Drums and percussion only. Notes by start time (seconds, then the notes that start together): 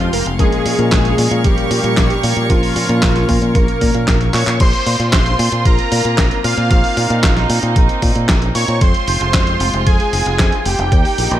0.00 closed hi-hat
0.13 open hi-hat
0.26 closed hi-hat
0.39 kick, closed hi-hat
0.52 closed hi-hat
0.66 open hi-hat
0.79 closed hi-hat
0.92 kick, snare, clap, closed hi-hat
1.05 closed hi-hat
1.18 open hi-hat
1.31 closed hi-hat
1.44 kick, closed hi-hat
1.58 closed hi-hat
1.71 open hi-hat
1.84 closed hi-hat
1.97 kick, snare, clap, closed hi-hat
2.10 closed hi-hat
2.23 open hi-hat
2.37 closed hi-hat
2.50 kick, closed hi-hat
2.63 open hi-hat
2.76 open hi-hat
2.89 closed hi-hat
3.02 kick, snare, clap, closed hi-hat
3.16 snare, closed hi-hat
3.29 kick, open hi-hat
3.42 closed hi-hat
3.55 kick, closed hi-hat
3.68 closed hi-hat
3.81 kick, open hi-hat
3.95 closed hi-hat
4.08 kick, snare, clap, closed hi-hat
4.21 closed hi-hat
4.34 clap, open hi-hat
4.47 clap, closed hi-hat
4.60 kick, closed hi-hat, crash
4.73 closed hi-hat
4.86 open hi-hat
5.00 closed hi-hat
5.13 kick, snare, clap, closed hi-hat
5.26 closed hi-hat
5.39 open hi-hat
5.52 closed hi-hat
5.65 kick, closed hi-hat
5.79 closed hi-hat
5.92 open hi-hat
6.05 closed hi-hat
6.18 kick, snare, clap, closed hi-hat
6.31 closed hi-hat
6.44 open hi-hat
6.58 closed hi-hat
6.71 kick, closed hi-hat
6.84 open hi-hat
6.97 open hi-hat
7.10 closed hi-hat
7.23 kick, snare, clap, closed hi-hat
7.37 snare, closed hi-hat
7.50 open hi-hat
7.63 closed hi-hat
7.76 kick, closed hi-hat
7.89 closed hi-hat
8.02 kick, open hi-hat
8.15 closed hi-hat
8.29 kick, snare, clap, closed hi-hat
8.42 closed hi-hat
8.55 open hi-hat
8.68 closed hi-hat
8.81 kick, closed hi-hat
8.94 closed hi-hat
9.08 open hi-hat
9.21 closed hi-hat
9.34 kick, snare, clap, closed hi-hat
9.47 closed hi-hat
9.60 open hi-hat
9.74 closed hi-hat
9.87 kick, closed hi-hat
10.00 closed hi-hat
10.13 open hi-hat
10.26 closed hi-hat
10.39 kick, snare, clap, closed hi-hat
10.52 closed hi-hat
10.66 open hi-hat
10.79 closed hi-hat
10.92 kick, closed hi-hat
11.05 open hi-hat
11.18 open hi-hat
11.31 closed hi-hat